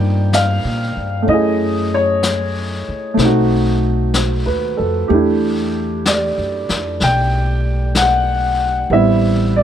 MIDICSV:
0, 0, Header, 1, 5, 480
1, 0, Start_track
1, 0, Tempo, 950872
1, 647, Time_signature, 4, 2, 24, 8
1, 4861, End_track
2, 0, Start_track
2, 0, Title_t, "Grand piano"
2, 0, Program_c, 0, 0
2, 0, Control_c, 0, 64, 127
2, 0, Note_on_c, 0, 55, 47
2, 0, Note_on_c, 0, 58, 34
2, 0, Note_on_c, 0, 60, 34
2, 0, Note_on_c, 0, 62, 43
2, 0, Note_on_c, 0, 63, 40
2, 0, Note_on_c, 0, 65, 54
2, 0, Note_on_c, 0, 74, 62
2, 0, Note_on_c, 0, 79, 73
2, 175, Note_on_c, 0, 77, 76
2, 182, Note_off_c, 0, 79, 0
2, 617, Note_on_c, 0, 57, 40
2, 630, Note_off_c, 0, 77, 0
2, 633, Note_off_c, 0, 55, 0
2, 634, Note_on_c, 0, 61, 33
2, 641, Note_off_c, 0, 58, 0
2, 645, Note_off_c, 0, 60, 0
2, 649, Note_on_c, 0, 75, 66
2, 650, Note_off_c, 0, 63, 0
2, 652, Note_off_c, 0, 62, 0
2, 652, Note_on_c, 0, 64, 37
2, 654, Control_c, 0, 64, 0
2, 658, Note_off_c, 0, 74, 0
2, 661, Note_off_c, 0, 65, 0
2, 673, Note_on_c, 0, 68, 43
2, 755, Control_c, 0, 64, 127
2, 981, Note_on_c, 0, 73, 69
2, 983, Note_off_c, 0, 75, 0
2, 1438, Note_off_c, 0, 73, 0
2, 1577, Note_off_c, 0, 57, 0
2, 1585, Note_on_c, 0, 57, 47
2, 1602, Note_off_c, 0, 61, 0
2, 1603, Note_on_c, 0, 60, 43
2, 1611, Note_off_c, 0, 64, 0
2, 1614, Control_c, 0, 64, 0
2, 1621, Note_on_c, 0, 63, 43
2, 1622, Note_off_c, 0, 68, 0
2, 1642, Note_on_c, 0, 66, 50
2, 1716, Control_c, 0, 64, 127
2, 2097, Note_on_c, 0, 72, 30
2, 2252, Note_on_c, 0, 71, 40
2, 2404, Note_off_c, 0, 72, 0
2, 2409, Note_on_c, 0, 69, 40
2, 2505, Note_off_c, 0, 71, 0
2, 2563, Note_off_c, 0, 57, 0
2, 2564, Note_on_c, 0, 67, 41
2, 2570, Note_on_c, 0, 57, 39
2, 2574, Note_off_c, 0, 60, 0
2, 2583, Note_off_c, 0, 63, 0
2, 2583, Note_on_c, 0, 62, 37
2, 2584, Control_c, 0, 64, 0
2, 2591, Note_on_c, 0, 64, 47
2, 2594, Note_off_c, 0, 66, 0
2, 2663, Note_off_c, 0, 69, 0
2, 2670, Control_c, 0, 64, 127
2, 3064, Note_on_c, 0, 74, 57
2, 3551, Note_on_c, 0, 79, 73
2, 3556, Note_off_c, 0, 74, 0
2, 4003, Note_off_c, 0, 79, 0
2, 4025, Note_on_c, 0, 78, 72
2, 4488, Note_off_c, 0, 67, 0
2, 4491, Note_off_c, 0, 57, 0
2, 4496, Note_off_c, 0, 64, 0
2, 4496, Note_on_c, 0, 55, 44
2, 4498, Note_off_c, 0, 62, 0
2, 4499, Note_on_c, 0, 59, 41
2, 4501, Control_c, 0, 64, 0
2, 4504, Note_on_c, 0, 60, 42
2, 4504, Note_on_c, 0, 64, 45
2, 4507, Note_on_c, 0, 76, 67
2, 4513, Note_off_c, 0, 78, 0
2, 4581, Control_c, 0, 64, 127
2, 4804, Note_off_c, 0, 76, 0
2, 4828, Note_on_c, 0, 74, 70
2, 4861, Note_off_c, 0, 55, 0
2, 4861, Note_off_c, 0, 59, 0
2, 4861, Note_off_c, 0, 60, 0
2, 4861, Note_off_c, 0, 64, 0
2, 4861, Note_off_c, 0, 74, 0
2, 4861, End_track
3, 0, Start_track
3, 0, Title_t, "Upright bass"
3, 0, Program_c, 1, 32
3, 0, Note_on_c, 1, 43, 70
3, 305, Note_off_c, 1, 43, 0
3, 326, Note_on_c, 1, 46, 46
3, 475, Note_off_c, 1, 46, 0
3, 487, Note_on_c, 1, 43, 46
3, 636, Note_off_c, 1, 43, 0
3, 645, Note_on_c, 1, 42, 62
3, 1432, Note_off_c, 1, 42, 0
3, 1603, Note_on_c, 1, 35, 70
3, 2232, Note_off_c, 1, 35, 0
3, 2255, Note_on_c, 1, 39, 42
3, 2405, Note_off_c, 1, 39, 0
3, 2421, Note_on_c, 1, 41, 46
3, 2568, Note_off_c, 1, 41, 0
3, 2574, Note_on_c, 1, 40, 60
3, 3198, Note_off_c, 1, 40, 0
3, 3221, Note_on_c, 1, 42, 43
3, 3369, Note_off_c, 1, 42, 0
3, 3380, Note_on_c, 1, 41, 53
3, 3528, Note_off_c, 1, 41, 0
3, 3543, Note_on_c, 1, 35, 63
3, 4476, Note_off_c, 1, 35, 0
3, 4493, Note_on_c, 1, 33, 60
3, 4861, Note_off_c, 1, 33, 0
3, 4861, End_track
4, 0, Start_track
4, 0, Title_t, "Muted upright bass strokes"
4, 1456, Note_on_c, 9, 29, 30
4, 1507, Note_off_c, 9, 29, 0
4, 4861, End_track
5, 0, Start_track
5, 0, Title_t, "Drums"
5, 167, Note_on_c, 9, 25, 28
5, 167, Note_on_c, 9, 38, 36
5, 167, Note_on_c, 9, 44, 40
5, 217, Note_off_c, 9, 38, 0
5, 217, Note_off_c, 9, 44, 0
5, 643, Note_off_c, 9, 25, 0
5, 643, Note_on_c, 9, 25, 27
5, 1125, Note_off_c, 9, 25, 0
5, 1125, Note_on_c, 9, 25, 30
5, 1125, Note_on_c, 9, 38, 35
5, 1125, Note_on_c, 9, 44, 46
5, 1175, Note_off_c, 9, 38, 0
5, 1175, Note_off_c, 9, 44, 0
5, 1606, Note_off_c, 9, 25, 0
5, 1606, Note_on_c, 9, 25, 24
5, 1606, Note_on_c, 9, 38, 22
5, 1657, Note_off_c, 9, 38, 0
5, 2089, Note_off_c, 9, 25, 0
5, 2089, Note_on_c, 9, 25, 26
5, 2089, Note_on_c, 9, 38, 37
5, 2089, Note_on_c, 9, 44, 45
5, 2139, Note_off_c, 9, 38, 0
5, 2139, Note_off_c, 9, 44, 0
5, 2573, Note_off_c, 9, 25, 0
5, 2573, Note_on_c, 9, 25, 31
5, 3057, Note_off_c, 9, 25, 0
5, 3057, Note_on_c, 9, 25, 32
5, 3057, Note_on_c, 9, 38, 41
5, 3057, Note_on_c, 9, 44, 41
5, 3107, Note_off_c, 9, 38, 0
5, 3107, Note_off_c, 9, 44, 0
5, 3377, Note_on_c, 9, 38, 21
5, 3427, Note_off_c, 9, 38, 0
5, 3534, Note_off_c, 9, 25, 0
5, 3534, Note_on_c, 9, 25, 27
5, 3534, Note_on_c, 9, 38, 24
5, 3584, Note_off_c, 9, 38, 0
5, 4012, Note_off_c, 9, 25, 0
5, 4012, Note_on_c, 9, 25, 31
5, 4012, Note_on_c, 9, 38, 38
5, 4012, Note_on_c, 9, 44, 46
5, 4063, Note_off_c, 9, 38, 0
5, 4063, Note_off_c, 9, 44, 0
5, 4488, Note_off_c, 9, 25, 0
5, 4488, Note_on_c, 9, 25, 26
5, 4861, Note_off_c, 9, 25, 0
5, 4861, End_track
0, 0, End_of_file